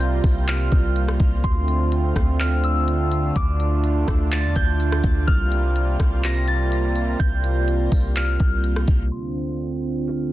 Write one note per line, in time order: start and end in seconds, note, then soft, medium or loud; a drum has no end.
0.00 0.21 C2 loud
0.00 1.40 C3 medium
0.00 1.40 G3 medium
0.00 1.40 A#3 medium
0.00 5.24 F4 medium
0.00 closed hi-hat medium
0.24 0.70 C2 loud
0.24 kick loud
0.24 open hi-hat medium
0.48 0.93 F6 medium
0.48 clap loud
0.48 closed hi-hat medium
0.72 1.18 C2 loud
0.72 kick medium
0.72 closed hi-hat medium
0.96 closed hi-hat medium
1.08 cross-stick loud
1.20 1.43 C2 loud
1.20 kick loud
1.20 closed hi-hat medium
1.44 2.13 D2 loud
1.44 5.24 D3 medium
1.44 5.24 A3 medium
1.44 3.34 C4 medium
1.44 1.89 C6 medium
1.44 kick loud
1.44 closed hi-hat medium
1.68 closed hi-hat medium
1.92 closed hi-hat medium
2.16 3.32 D2 loud
2.16 kick loud
2.16 cross-stick loud
2.16 closed hi-hat medium
2.40 2.63 F6 medium
2.40 clap loud
2.40 closed hi-hat medium
2.64 3.32 E6 medium
2.64 closed hi-hat medium
2.88 closed hi-hat medium
3.12 closed hi-hat medium
3.36 4.05 D2 loud
3.36 5.26 D4 medium
3.36 3.81 D6 medium
3.36 kick loud
3.36 closed hi-hat medium
3.60 closed hi-hat medium
3.84 closed hi-hat medium
4.08 4.45 D2 loud
4.08 kick loud
4.08 cross-stick loud
4.08 closed hi-hat medium
4.32 4.55 A6 medium
4.32 clap loud
4.32 closed hi-hat medium
4.44 4.55 E2 loud
4.56 5.02 D2 loud
4.56 5.24 G6 medium
4.56 kick medium
4.56 closed hi-hat medium
4.80 closed hi-hat medium
4.92 cross-stick loud
5.04 5.27 D2 loud
5.04 kick loud
5.04 closed hi-hat medium
5.27 5.97 C2 loud
5.27 9.08 C3 medium
5.27 9.08 G3 medium
5.27 9.08 A#3 medium
5.27 9.08 F4 medium
5.27 5.73 F6 loud
5.27 kick loud
5.27 closed hi-hat medium
5.52 closed hi-hat medium
5.76 closed hi-hat medium
6.00 7.16 C2 loud
6.00 kick loud
6.00 cross-stick loud
6.00 closed hi-hat medium
6.24 6.47 A#6 medium
6.24 clap loud
6.24 closed hi-hat medium
6.48 7.16 A6 medium
6.48 closed hi-hat medium
6.72 closed hi-hat medium
6.96 closed hi-hat medium
7.20 7.89 C2 loud
7.20 7.65 G6 loud
7.20 kick loud
7.20 closed hi-hat medium
7.44 closed hi-hat medium
7.68 closed hi-hat medium
7.92 8.38 C2 loud
7.92 kick loud
7.92 open hi-hat medium
8.16 8.61 F6 medium
8.16 clap loud
8.16 closed hi-hat medium
8.40 8.86 C2 loud
8.40 kick medium
8.40 closed hi-hat medium
8.64 closed hi-hat medium
8.76 cross-stick loud
8.88 9.11 C2 loud
8.88 kick loud
8.88 closed hi-hat medium
9.12 10.33 D2 medium
9.12 10.33 D3 medium
9.12 10.33 C4 medium
9.12 10.33 F4 medium
9.12 9.57 C6 medium
10.08 10.31 F6 medium
10.08 clap loud